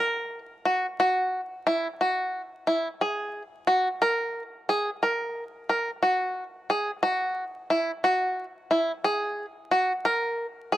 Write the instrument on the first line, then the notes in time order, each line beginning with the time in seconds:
five-string banjo
Already playing: A#4
0.65 F#4
1.00 F#4
1.67 E4
2.01 F#4
2.67 E4
3.01 G#4
3.67 F#4
4.02 A#4
4.69 G#4
5.03 A#4
5.69 A#4
6.03 F#4
6.70 G#4
7.03 F#4
7.70 E4
8.04 F#4
8.71 E4
9.04 G#4
9.71 F#4
10.05 A#4
10.72 G#4